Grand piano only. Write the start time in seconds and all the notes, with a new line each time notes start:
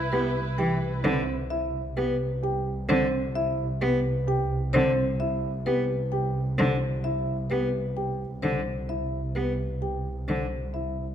0.12 G4
0.58 G4
1.05 C4
1.51 E4
1.97 G4
2.43 G4
2.89 C4
3.35 E4
3.81 G4
4.27 G4
4.74 C4
5.20 E4
5.67 G4
6.13 G4
7.05 E4
7.51 G4
7.97 G4
8.89 E4
9.36 G4
9.81 G4
10.74 E4